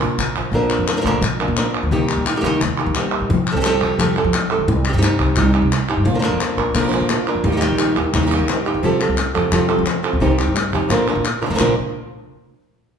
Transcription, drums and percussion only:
0.01 cajon bass loud
0.01 clap medium
0.19 cajon bass loud
0.19 clap medium
0.36 cajon bass medium
0.53 cajon bass loud
0.53 cajon slap soft
0.70 clap medium
0.88 cajon slap medium
0.88 clap medium
1.06 cajon bass medium
1.06 clap soft
1.23 cajon bass loud
1.23 clap medium
1.41 clap medium
1.57 cajon slap loud
1.57 clap medium
1.75 clap soft
1.92 cajon bass loud
2.09 cajon slap soft
2.09 clap medium
2.26 cajon slap loud
2.26 clap medium
2.44 cajon bass medium
2.44 clap medium
2.61 cajon bass loud
2.61 clap medium
2.78 clap soft
2.95 cajon bass medium
2.95 cajon slap loud
2.95 clap medium
3.12 clap medium
3.31 cajon bass loud
3.47 clap medium
3.64 cajon slap loud
3.64 clap medium
3.81 cajon bass medium
3.81 clap medium
4.00 cajon bass loud
4.00 clap medium
4.34 cajon slap loud
4.34 clap loud
4.69 cajon bass loud
4.69 cajon slap soft
4.85 cajon slap soft
4.85 clap medium
5.03 cajon slap medium
5.03 clap medium
5.19 cajon bass medium
5.19 clap medium
5.36 cajon bass medium
5.36 clap medium
5.54 clap soft
5.72 cajon slap loud
5.72 clap medium
6.06 cajon bass loud
6.23 clap medium
6.40 cajon slap medium
6.40 clap medium
6.58 cajon bass medium
6.58 cajon slap soft
6.75 cajon bass medium
6.75 clap medium
6.92 clap medium
7.09 cajon bass medium
7.09 cajon slap loud
7.09 clap loud
7.27 clap medium
7.44 cajon bass loud
7.44 cajon slap soft
7.61 clap medium
7.79 cajon slap loud
7.79 clap medium
7.97 cajon bass medium
7.97 cajon slap soft
8.14 cajon bass loud
8.14 clap medium
8.49 cajon bass medium
8.49 cajon slap loud
8.49 clap medium
8.66 clap soft
8.84 cajon bass loud
9.01 clap medium
9.18 cajon slap medium
9.18 clap medium
9.36 cajon bass medium
9.52 cajon bass loud
9.52 clap loud
9.69 clap soft
9.86 cajon bass medium
9.86 cajon slap loud
9.86 clap medium
10.05 clap medium
10.22 cajon bass loud
10.39 cajon slap soft
10.39 clap medium
10.56 cajon slap loud
10.56 clap medium
10.74 cajon bass medium
10.74 clap medium
10.90 cajon slap medium
10.90 clap medium
11.08 cajon slap medium
11.08 clap soft
11.25 clap medium
11.42 cajon bass medium
11.59 cajon bass loud
11.59 clap loud

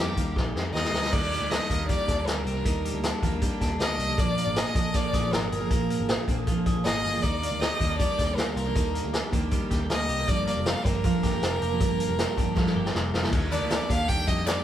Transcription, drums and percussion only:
0.17 kick medium
0.17 closed hi-hat medium
0.36 kick medium
0.36 snare medium
0.56 snare medium
0.75 snare medium
0.85 snare medium
0.94 snare medium
1.04 snare medium
1.13 kick loud
1.13 crash medium
1.33 closed hi-hat medium
1.51 snare loud
1.51 closed hi-hat medium
1.70 kick medium
1.70 closed hi-hat medium
1.89 kick medium
1.89 closed hi-hat medium
2.08 kick medium
2.08 snare soft
2.08 closed hi-hat medium
2.27 snare medium
2.27 closed hi-hat medium
2.47 closed hi-hat medium
2.65 kick loud
2.65 closed hi-hat medium
2.85 closed hi-hat medium
3.03 snare loud
3.03 closed hi-hat medium
3.23 kick medium
3.23 closed hi-hat medium
3.42 kick medium
3.42 closed hi-hat medium
3.61 kick medium
3.61 snare soft
3.61 closed hi-hat medium
3.80 snare loud
3.80 closed hi-hat medium
4.00 closed hi-hat medium
4.18 kick loud
4.18 closed hi-hat medium
4.38 closed hi-hat medium
4.56 snare loud
4.56 closed hi-hat medium
4.75 kick loud
4.75 closed hi-hat medium
4.94 kick loud
4.94 closed hi-hat medium
5.13 kick medium
5.13 snare soft
5.13 closed hi-hat medium
5.33 snare loud
5.33 closed hi-hat medium
5.52 closed hi-hat medium
5.71 kick loud
5.71 closed hi-hat medium
5.90 closed hi-hat medium
6.09 snare loud
6.09 closed hi-hat medium
6.28 kick medium
6.28 closed hi-hat medium
6.47 kick medium
6.47 closed hi-hat medium
6.66 kick medium
6.66 closed hi-hat medium
6.85 snare medium
6.85 closed hi-hat medium
7.05 open hi-hat medium
7.23 kick medium
7.23 closed hi-hat medium
7.43 closed hi-hat medium
7.61 snare loud
7.61 closed hi-hat medium
7.80 kick medium
7.80 closed hi-hat medium
7.99 kick loud
7.99 closed hi-hat medium
8.19 kick medium
8.19 snare soft
8.19 closed hi-hat medium
8.38 snare medium
8.38 closed hi-hat medium
8.57 closed hi-hat medium
8.75 kick loud
8.75 closed hi-hat medium
8.95 closed hi-hat medium
9.13 snare loud
9.13 closed hi-hat medium
9.33 kick medium
9.33 closed hi-hat medium
9.51 kick medium
9.51 closed hi-hat medium
9.71 kick medium
9.71 snare soft
9.71 closed hi-hat medium
9.90 snare medium
9.90 closed hi-hat medium
10.09 closed hi-hat medium
10.28 kick loud
10.28 closed hi-hat medium
10.47 closed hi-hat medium
10.66 snare loud
10.66 closed hi-hat medium
10.85 kick medium
10.85 closed hi-hat medium
11.04 kick medium
11.04 closed hi-hat medium
11.23 kick medium
11.23 snare soft
11.23 closed hi-hat medium
11.43 snare loud
11.43 closed hi-hat medium
11.62 closed hi-hat medium
11.80 kick loud
11.80 closed hi-hat medium
12.00 closed hi-hat medium
12.18 snare loud
12.18 closed hi-hat medium
12.38 kick medium
12.38 closed hi-hat medium
12.57 kick loud
12.57 snare medium
12.66 snare medium
12.86 snare medium
12.95 snare medium
13.14 snare medium
13.23 snare medium
13.33 kick loud
13.33 crash medium
13.52 clap medium
13.52 closed hi-hat medium
13.70 snare loud
13.70 clap medium
13.70 closed hi-hat medium
13.90 kick medium
13.90 closed hi-hat medium
14.09 kick medium
14.09 closed hi-hat medium
14.28 kick medium
14.28 closed hi-hat medium
14.47 snare medium
14.47 clap loud
14.47 closed hi-hat medium

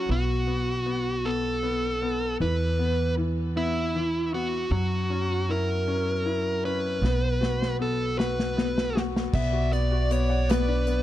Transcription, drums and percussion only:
7.04 snare soft
7.43 snare medium
7.62 snare soft
8.20 snare medium
8.39 snare medium
8.58 snare medium
8.78 snare medium
8.97 snare medium
9.16 snare medium
9.34 kick loud
9.34 crash medium
9.73 closed hi-hat soft
10.11 closed hi-hat medium
10.49 snare loud
10.49 closed hi-hat medium
10.87 closed hi-hat medium

